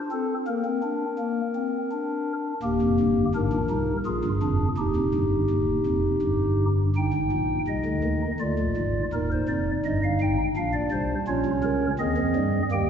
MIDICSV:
0, 0, Header, 1, 2, 480
1, 0, Start_track
1, 0, Key_signature, -3, "major"
1, 0, Tempo, 720288
1, 319, Time_signature, 3, 2, 24, 8
1, 8595, End_track
2, 0, Start_track
2, 0, Title_t, "Pipe organ"
2, 0, Program_c, 0, 19
2, 74, Note_on_c, 0, 60, 71
2, 77, Note_on_c, 0, 69, 65
2, 224, Note_off_c, 0, 60, 0
2, 225, Note_off_c, 0, 69, 0
2, 315, Note_on_c, 0, 58, 80
2, 316, Note_on_c, 0, 70, 67
2, 419, Note_off_c, 0, 58, 0
2, 430, Note_on_c, 0, 60, 77
2, 536, Note_off_c, 0, 60, 0
2, 555, Note_on_c, 0, 62, 78
2, 703, Note_off_c, 0, 62, 0
2, 791, Note_on_c, 0, 58, 80
2, 941, Note_off_c, 0, 58, 0
2, 1035, Note_on_c, 0, 60, 72
2, 1183, Note_off_c, 0, 60, 0
2, 1279, Note_on_c, 0, 62, 77
2, 1552, Note_off_c, 0, 70, 0
2, 1690, Note_off_c, 0, 62, 0
2, 1752, Note_on_c, 0, 27, 81
2, 1753, Note_on_c, 0, 39, 75
2, 1753, Note_on_c, 0, 67, 67
2, 1755, Note_on_c, 0, 58, 67
2, 1856, Note_off_c, 0, 27, 0
2, 1856, Note_off_c, 0, 39, 0
2, 1876, Note_on_c, 0, 29, 73
2, 1876, Note_on_c, 0, 41, 74
2, 1978, Note_off_c, 0, 29, 0
2, 1978, Note_off_c, 0, 41, 0
2, 1998, Note_on_c, 0, 43, 75
2, 2000, Note_on_c, 0, 31, 75
2, 2145, Note_off_c, 0, 43, 0
2, 2146, Note_off_c, 0, 31, 0
2, 2165, Note_off_c, 0, 67, 0
2, 2166, Note_off_c, 0, 58, 0
2, 2233, Note_on_c, 0, 32, 80
2, 2233, Note_on_c, 0, 44, 78
2, 2233, Note_on_c, 0, 70, 71
2, 2234, Note_on_c, 0, 62, 72
2, 2336, Note_off_c, 0, 32, 0
2, 2336, Note_off_c, 0, 44, 0
2, 2350, Note_on_c, 0, 34, 85
2, 2350, Note_on_c, 0, 46, 80
2, 2382, Note_off_c, 0, 62, 0
2, 2454, Note_off_c, 0, 34, 0
2, 2455, Note_off_c, 0, 46, 0
2, 2465, Note_on_c, 0, 63, 66
2, 2468, Note_on_c, 0, 36, 77
2, 2469, Note_on_c, 0, 48, 72
2, 2617, Note_off_c, 0, 63, 0
2, 2618, Note_off_c, 0, 36, 0
2, 2619, Note_off_c, 0, 48, 0
2, 2646, Note_off_c, 0, 70, 0
2, 2702, Note_on_c, 0, 68, 62
2, 2704, Note_on_c, 0, 46, 74
2, 2704, Note_on_c, 0, 65, 67
2, 2705, Note_on_c, 0, 34, 75
2, 2812, Note_off_c, 0, 34, 0
2, 2812, Note_off_c, 0, 46, 0
2, 2826, Note_on_c, 0, 31, 82
2, 2829, Note_on_c, 0, 43, 75
2, 2856, Note_off_c, 0, 65, 0
2, 2932, Note_off_c, 0, 31, 0
2, 2934, Note_off_c, 0, 43, 0
2, 2948, Note_on_c, 0, 29, 73
2, 2948, Note_on_c, 0, 62, 63
2, 2949, Note_on_c, 0, 41, 71
2, 3099, Note_off_c, 0, 29, 0
2, 3099, Note_off_c, 0, 41, 0
2, 3099, Note_off_c, 0, 62, 0
2, 3120, Note_off_c, 0, 68, 0
2, 3183, Note_on_c, 0, 27, 77
2, 3183, Note_on_c, 0, 63, 64
2, 3184, Note_on_c, 0, 39, 76
2, 3184, Note_on_c, 0, 67, 67
2, 3291, Note_off_c, 0, 27, 0
2, 3291, Note_off_c, 0, 39, 0
2, 3302, Note_on_c, 0, 29, 70
2, 3307, Note_on_c, 0, 41, 70
2, 3411, Note_off_c, 0, 29, 0
2, 3413, Note_off_c, 0, 41, 0
2, 3427, Note_on_c, 0, 31, 73
2, 3427, Note_on_c, 0, 43, 77
2, 3579, Note_off_c, 0, 31, 0
2, 3579, Note_off_c, 0, 43, 0
2, 3668, Note_on_c, 0, 27, 71
2, 3668, Note_on_c, 0, 39, 70
2, 3819, Note_off_c, 0, 27, 0
2, 3820, Note_off_c, 0, 39, 0
2, 3905, Note_on_c, 0, 41, 75
2, 3908, Note_on_c, 0, 29, 70
2, 4058, Note_off_c, 0, 41, 0
2, 4060, Note_off_c, 0, 29, 0
2, 4145, Note_on_c, 0, 43, 70
2, 4146, Note_on_c, 0, 31, 69
2, 4431, Note_off_c, 0, 63, 0
2, 4432, Note_off_c, 0, 67, 0
2, 4565, Note_off_c, 0, 43, 0
2, 4566, Note_off_c, 0, 31, 0
2, 4635, Note_on_c, 0, 31, 61
2, 4636, Note_on_c, 0, 43, 64
2, 4638, Note_on_c, 0, 79, 59
2, 4639, Note_on_c, 0, 63, 57
2, 4741, Note_off_c, 0, 31, 0
2, 4741, Note_off_c, 0, 43, 0
2, 4756, Note_on_c, 0, 32, 56
2, 4756, Note_on_c, 0, 44, 59
2, 4862, Note_off_c, 0, 32, 0
2, 4862, Note_off_c, 0, 44, 0
2, 4878, Note_on_c, 0, 34, 60
2, 4878, Note_on_c, 0, 46, 62
2, 5029, Note_off_c, 0, 34, 0
2, 5029, Note_off_c, 0, 46, 0
2, 5055, Note_off_c, 0, 79, 0
2, 5115, Note_on_c, 0, 48, 64
2, 5116, Note_on_c, 0, 36, 64
2, 5116, Note_on_c, 0, 75, 59
2, 5223, Note_off_c, 0, 36, 0
2, 5223, Note_off_c, 0, 48, 0
2, 5235, Note_on_c, 0, 50, 62
2, 5237, Note_on_c, 0, 38, 63
2, 5344, Note_off_c, 0, 50, 0
2, 5345, Note_off_c, 0, 38, 0
2, 5358, Note_on_c, 0, 51, 57
2, 5359, Note_on_c, 0, 39, 59
2, 5473, Note_off_c, 0, 63, 0
2, 5511, Note_off_c, 0, 51, 0
2, 5512, Note_off_c, 0, 39, 0
2, 5537, Note_off_c, 0, 75, 0
2, 5598, Note_on_c, 0, 38, 61
2, 5598, Note_on_c, 0, 65, 59
2, 5599, Note_on_c, 0, 50, 62
2, 5599, Note_on_c, 0, 74, 55
2, 5707, Note_off_c, 0, 38, 0
2, 5707, Note_off_c, 0, 50, 0
2, 5723, Note_on_c, 0, 34, 63
2, 5723, Note_on_c, 0, 46, 62
2, 5830, Note_off_c, 0, 34, 0
2, 5830, Note_off_c, 0, 46, 0
2, 5844, Note_on_c, 0, 32, 59
2, 5844, Note_on_c, 0, 44, 63
2, 5995, Note_off_c, 0, 32, 0
2, 5995, Note_off_c, 0, 44, 0
2, 6018, Note_off_c, 0, 65, 0
2, 6018, Note_off_c, 0, 74, 0
2, 6084, Note_on_c, 0, 63, 54
2, 6085, Note_on_c, 0, 27, 60
2, 6087, Note_on_c, 0, 39, 56
2, 6087, Note_on_c, 0, 70, 65
2, 6192, Note_off_c, 0, 70, 0
2, 6208, Note_on_c, 0, 72, 64
2, 6236, Note_off_c, 0, 27, 0
2, 6237, Note_off_c, 0, 39, 0
2, 6313, Note_off_c, 0, 72, 0
2, 6320, Note_on_c, 0, 41, 53
2, 6321, Note_on_c, 0, 29, 56
2, 6322, Note_on_c, 0, 74, 67
2, 6472, Note_off_c, 0, 41, 0
2, 6473, Note_off_c, 0, 29, 0
2, 6474, Note_off_c, 0, 74, 0
2, 6565, Note_on_c, 0, 75, 76
2, 6566, Note_on_c, 0, 31, 63
2, 6569, Note_on_c, 0, 43, 60
2, 6671, Note_off_c, 0, 75, 0
2, 6686, Note_on_c, 0, 77, 74
2, 6716, Note_off_c, 0, 31, 0
2, 6718, Note_off_c, 0, 43, 0
2, 6791, Note_off_c, 0, 77, 0
2, 6805, Note_on_c, 0, 44, 61
2, 6805, Note_on_c, 0, 79, 72
2, 6806, Note_on_c, 0, 32, 57
2, 6910, Note_off_c, 0, 63, 0
2, 6954, Note_off_c, 0, 44, 0
2, 6954, Note_off_c, 0, 79, 0
2, 6955, Note_off_c, 0, 32, 0
2, 7040, Note_on_c, 0, 34, 62
2, 7041, Note_on_c, 0, 62, 65
2, 7041, Note_on_c, 0, 77, 78
2, 7042, Note_on_c, 0, 46, 65
2, 7147, Note_off_c, 0, 77, 0
2, 7154, Note_on_c, 0, 74, 72
2, 7190, Note_off_c, 0, 34, 0
2, 7192, Note_off_c, 0, 46, 0
2, 7263, Note_off_c, 0, 74, 0
2, 7272, Note_on_c, 0, 48, 66
2, 7274, Note_on_c, 0, 36, 64
2, 7276, Note_on_c, 0, 72, 72
2, 7425, Note_off_c, 0, 48, 0
2, 7426, Note_off_c, 0, 36, 0
2, 7428, Note_off_c, 0, 72, 0
2, 7455, Note_off_c, 0, 62, 0
2, 7514, Note_on_c, 0, 34, 81
2, 7514, Note_on_c, 0, 46, 74
2, 7514, Note_on_c, 0, 65, 71
2, 7515, Note_on_c, 0, 61, 66
2, 7515, Note_on_c, 0, 73, 72
2, 7622, Note_off_c, 0, 46, 0
2, 7623, Note_off_c, 0, 34, 0
2, 7634, Note_on_c, 0, 36, 76
2, 7634, Note_on_c, 0, 48, 72
2, 7666, Note_off_c, 0, 65, 0
2, 7742, Note_off_c, 0, 36, 0
2, 7742, Note_off_c, 0, 48, 0
2, 7753, Note_on_c, 0, 70, 67
2, 7754, Note_on_c, 0, 37, 77
2, 7755, Note_on_c, 0, 49, 77
2, 7906, Note_off_c, 0, 37, 0
2, 7906, Note_off_c, 0, 70, 0
2, 7907, Note_off_c, 0, 49, 0
2, 7932, Note_off_c, 0, 61, 0
2, 7932, Note_off_c, 0, 73, 0
2, 7990, Note_on_c, 0, 75, 70
2, 7991, Note_on_c, 0, 39, 82
2, 7991, Note_on_c, 0, 60, 75
2, 7992, Note_on_c, 0, 51, 78
2, 7994, Note_on_c, 0, 68, 74
2, 8100, Note_off_c, 0, 39, 0
2, 8101, Note_off_c, 0, 51, 0
2, 8111, Note_on_c, 0, 41, 77
2, 8111, Note_on_c, 0, 53, 77
2, 8221, Note_off_c, 0, 41, 0
2, 8221, Note_off_c, 0, 53, 0
2, 8236, Note_on_c, 0, 43, 71
2, 8236, Note_on_c, 0, 55, 72
2, 8388, Note_off_c, 0, 55, 0
2, 8389, Note_off_c, 0, 43, 0
2, 8410, Note_off_c, 0, 60, 0
2, 8410, Note_off_c, 0, 75, 0
2, 8412, Note_off_c, 0, 68, 0
2, 8474, Note_on_c, 0, 39, 73
2, 8475, Note_on_c, 0, 51, 72
2, 8476, Note_on_c, 0, 58, 65
2, 8476, Note_on_c, 0, 67, 68
2, 8478, Note_on_c, 0, 79, 62
2, 8583, Note_off_c, 0, 39, 0
2, 8584, Note_off_c, 0, 51, 0
2, 8595, Note_off_c, 0, 58, 0
2, 8595, Note_off_c, 0, 67, 0
2, 8595, Note_off_c, 0, 79, 0
2, 8595, End_track
0, 0, End_of_file